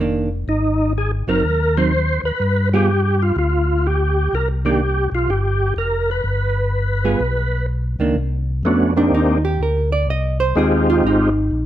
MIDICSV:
0, 0, Header, 1, 4, 480
1, 0, Start_track
1, 0, Tempo, 480384
1, 477, Time_signature, 4, 2, 24, 8
1, 11649, End_track
2, 0, Start_track
2, 0, Title_t, "Tonewheel organ"
2, 0, Program_c, 0, 16
2, 486, Note_on_c, 0, 63, 77
2, 929, Note_off_c, 0, 63, 0
2, 977, Note_on_c, 0, 68, 80
2, 1115, Note_off_c, 0, 68, 0
2, 1286, Note_on_c, 0, 70, 99
2, 1773, Note_on_c, 0, 72, 95
2, 1775, Note_off_c, 0, 70, 0
2, 2212, Note_off_c, 0, 72, 0
2, 2252, Note_on_c, 0, 71, 98
2, 2692, Note_off_c, 0, 71, 0
2, 2734, Note_on_c, 0, 67, 107
2, 3220, Note_off_c, 0, 67, 0
2, 3222, Note_on_c, 0, 65, 82
2, 3364, Note_off_c, 0, 65, 0
2, 3382, Note_on_c, 0, 65, 80
2, 3863, Note_on_c, 0, 67, 88
2, 3867, Note_off_c, 0, 65, 0
2, 4344, Note_on_c, 0, 70, 89
2, 4347, Note_off_c, 0, 67, 0
2, 4481, Note_off_c, 0, 70, 0
2, 4654, Note_on_c, 0, 67, 89
2, 5093, Note_off_c, 0, 67, 0
2, 5142, Note_on_c, 0, 65, 81
2, 5297, Note_on_c, 0, 67, 79
2, 5300, Note_off_c, 0, 65, 0
2, 5737, Note_off_c, 0, 67, 0
2, 5778, Note_on_c, 0, 70, 94
2, 6095, Note_off_c, 0, 70, 0
2, 6107, Note_on_c, 0, 71, 74
2, 7656, Note_off_c, 0, 71, 0
2, 8642, Note_on_c, 0, 57, 62
2, 8646, Note_on_c, 0, 59, 55
2, 8649, Note_on_c, 0, 61, 54
2, 8656, Note_on_c, 0, 62, 54
2, 8658, Note_on_c, 0, 66, 62
2, 8924, Note_off_c, 0, 57, 0
2, 8926, Note_off_c, 0, 59, 0
2, 8927, Note_off_c, 0, 61, 0
2, 8931, Note_off_c, 0, 62, 0
2, 8932, Note_off_c, 0, 66, 0
2, 8959, Note_on_c, 0, 58, 60
2, 8960, Note_on_c, 0, 60, 45
2, 8963, Note_on_c, 0, 62, 46
2, 8965, Note_on_c, 0, 63, 49
2, 8969, Note_on_c, 0, 67, 62
2, 9373, Note_off_c, 0, 58, 0
2, 9373, Note_off_c, 0, 60, 0
2, 9375, Note_off_c, 0, 62, 0
2, 9376, Note_off_c, 0, 63, 0
2, 9378, Note_off_c, 0, 67, 0
2, 10548, Note_on_c, 0, 56, 62
2, 10555, Note_on_c, 0, 60, 56
2, 10556, Note_on_c, 0, 63, 52
2, 10560, Note_on_c, 0, 65, 57
2, 10563, Note_on_c, 0, 67, 62
2, 11282, Note_off_c, 0, 56, 0
2, 11286, Note_off_c, 0, 60, 0
2, 11287, Note_off_c, 0, 63, 0
2, 11288, Note_off_c, 0, 65, 0
2, 11290, Note_off_c, 0, 67, 0
2, 11649, End_track
3, 0, Start_track
3, 0, Title_t, "Hollow-body jazz guitar"
3, 0, Program_c, 1, 26
3, 0, Note_on_c, 1, 51, 48
3, 7, Note_on_c, 1, 58, 58
3, 13, Note_on_c, 1, 62, 54
3, 281, Note_off_c, 1, 51, 0
3, 285, Note_off_c, 1, 58, 0
3, 289, Note_off_c, 1, 62, 0
3, 1277, Note_on_c, 1, 54, 55
3, 1287, Note_on_c, 1, 60, 52
3, 1290, Note_on_c, 1, 63, 62
3, 1424, Note_off_c, 1, 54, 0
3, 1429, Note_off_c, 1, 60, 0
3, 1430, Note_off_c, 1, 63, 0
3, 1769, Note_on_c, 1, 54, 52
3, 1776, Note_on_c, 1, 60, 59
3, 1781, Note_on_c, 1, 63, 55
3, 1911, Note_off_c, 1, 54, 0
3, 1914, Note_off_c, 1, 60, 0
3, 1916, Note_off_c, 1, 63, 0
3, 2731, Note_on_c, 1, 55, 60
3, 2738, Note_on_c, 1, 59, 59
3, 2742, Note_on_c, 1, 65, 60
3, 2745, Note_on_c, 1, 68, 62
3, 2872, Note_off_c, 1, 55, 0
3, 2876, Note_off_c, 1, 59, 0
3, 2878, Note_off_c, 1, 65, 0
3, 2879, Note_off_c, 1, 68, 0
3, 4645, Note_on_c, 1, 51, 57
3, 4654, Note_on_c, 1, 58, 58
3, 4660, Note_on_c, 1, 62, 62
3, 4790, Note_off_c, 1, 51, 0
3, 4795, Note_off_c, 1, 58, 0
3, 4798, Note_off_c, 1, 62, 0
3, 7038, Note_on_c, 1, 55, 52
3, 7041, Note_on_c, 1, 59, 57
3, 7046, Note_on_c, 1, 65, 54
3, 7047, Note_on_c, 1, 68, 60
3, 7186, Note_off_c, 1, 55, 0
3, 7187, Note_off_c, 1, 59, 0
3, 7190, Note_off_c, 1, 65, 0
3, 7190, Note_off_c, 1, 68, 0
3, 7992, Note_on_c, 1, 51, 54
3, 8000, Note_on_c, 1, 58, 55
3, 8003, Note_on_c, 1, 62, 55
3, 8142, Note_off_c, 1, 51, 0
3, 8146, Note_off_c, 1, 58, 0
3, 8148, Note_off_c, 1, 62, 0
3, 8967, Note_on_c, 1, 62, 73
3, 9121, Note_off_c, 1, 62, 0
3, 9137, Note_on_c, 1, 63, 69
3, 9434, Note_off_c, 1, 63, 0
3, 9439, Note_on_c, 1, 67, 75
3, 9596, Note_off_c, 1, 67, 0
3, 9619, Note_on_c, 1, 70, 65
3, 9912, Note_off_c, 1, 70, 0
3, 9916, Note_on_c, 1, 74, 78
3, 10074, Note_off_c, 1, 74, 0
3, 10095, Note_on_c, 1, 75, 82
3, 10388, Note_off_c, 1, 75, 0
3, 10392, Note_on_c, 1, 72, 82
3, 10551, Note_off_c, 1, 72, 0
3, 10574, Note_on_c, 1, 68, 70
3, 10870, Note_off_c, 1, 68, 0
3, 10888, Note_on_c, 1, 65, 77
3, 11039, Note_off_c, 1, 65, 0
3, 11057, Note_on_c, 1, 63, 67
3, 11649, Note_off_c, 1, 63, 0
3, 11649, End_track
4, 0, Start_track
4, 0, Title_t, "Tonewheel organ"
4, 0, Program_c, 2, 16
4, 0, Note_on_c, 2, 29, 70
4, 441, Note_off_c, 2, 29, 0
4, 478, Note_on_c, 2, 32, 72
4, 1235, Note_off_c, 2, 32, 0
4, 1271, Note_on_c, 2, 30, 60
4, 1426, Note_off_c, 2, 30, 0
4, 1435, Note_on_c, 2, 39, 79
4, 2194, Note_off_c, 2, 39, 0
4, 2233, Note_on_c, 2, 39, 34
4, 2316, Note_off_c, 2, 39, 0
4, 2394, Note_on_c, 2, 43, 77
4, 3319, Note_off_c, 2, 43, 0
4, 3357, Note_on_c, 2, 38, 85
4, 4280, Note_off_c, 2, 38, 0
4, 4323, Note_on_c, 2, 36, 77
4, 5079, Note_off_c, 2, 36, 0
4, 5112, Note_on_c, 2, 35, 64
4, 5268, Note_off_c, 2, 35, 0
4, 5276, Note_on_c, 2, 31, 87
4, 5726, Note_off_c, 2, 31, 0
4, 5757, Note_on_c, 2, 29, 75
4, 6206, Note_off_c, 2, 29, 0
4, 6234, Note_on_c, 2, 31, 74
4, 7158, Note_off_c, 2, 31, 0
4, 7192, Note_on_c, 2, 35, 82
4, 7951, Note_off_c, 2, 35, 0
4, 7982, Note_on_c, 2, 37, 68
4, 8142, Note_off_c, 2, 37, 0
4, 8146, Note_on_c, 2, 36, 74
4, 8618, Note_off_c, 2, 36, 0
4, 8625, Note_on_c, 2, 41, 77
4, 9097, Note_off_c, 2, 41, 0
4, 9104, Note_on_c, 2, 39, 80
4, 9576, Note_off_c, 2, 39, 0
4, 9583, Note_on_c, 2, 38, 79
4, 10055, Note_off_c, 2, 38, 0
4, 10059, Note_on_c, 2, 36, 78
4, 10532, Note_off_c, 2, 36, 0
4, 10545, Note_on_c, 2, 39, 80
4, 11015, Note_off_c, 2, 39, 0
4, 11024, Note_on_c, 2, 32, 81
4, 11494, Note_off_c, 2, 32, 0
4, 11503, Note_on_c, 2, 34, 80
4, 11649, Note_off_c, 2, 34, 0
4, 11649, End_track
0, 0, End_of_file